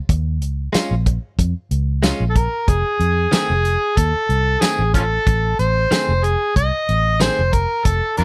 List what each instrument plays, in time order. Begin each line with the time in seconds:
0.09 fingered electric bass D#2, kick, closed hi-hat
0.41 fingered electric bass C#2, closed hi-hat
0.73 clean electric guitar G#3 C#4 F4, muted fingered electric bass stroke, snare, closed hi-hat, tambourine
0.91 fingered electric bass A#1
1.06 kick, closed hi-hat
1.39 fingered electric bass F2, kick, closed hi-hat
1.71 fingered electric bass C#2, closed hi-hat
2.03 clean electric guitar G#3 C#4 F4, snare, closed hi-hat, tambourine
2.20 fingered electric bass A#1
2.30 harmonica A4
2.36 harmonica A#4, kick, closed hi-hat
2.68 fingered electric bass F1, harmonica G#4, kick, closed hi-hat
3.00 fingered electric bass F2, closed hi-hat
3.32 clean electric guitar D#3 A3 C4 G#4, harmonica G#4, snare, closed hi-hat, tambourine
3.50 fingered electric bass F1
3.65 closed hi-hat
3.97 fingered electric bass D#2, harmonica A4, kick, closed hi-hat
4.14 muted fingered electric bass stroke
4.29 fingered electric bass C2, closed hi-hat
4.61 clean electric guitar D#3 A3 C4 G#4, harmonica G#4, snare, closed hi-hat, tambourine
4.79 fingered electric bass A1
4.94 harmonica C#4 F4 A4, kick, closed hi-hat
5.27 fingered electric bass A1, kick, closed hi-hat
5.59 fingered electric bass A1, harmonica C5, closed hi-hat
5.91 clean electric guitar D#3 A3 C4 G#4, muted fingered electric bass stroke, snare, closed hi-hat, tambourine
6.09 fingered electric bass F1
6.24 harmonica G#4, closed hi-hat
6.56 fingered electric bass C2, harmonica D#5, kick, closed hi-hat
6.89 fingered electric bass A1, closed hi-hat
7.20 clean electric guitar D#3 A3 C4 G#4, harmonica C5, snare, closed hi-hat, tambourine
7.39 fingered electric bass F1
7.53 harmonica A#4, kick, closed hi-hat
7.85 fingered electric bass F1, harmonica A4, kick, closed hi-hat
8.17 fingered electric bass F2, harmonica D4 F4 A#4, closed hi-hat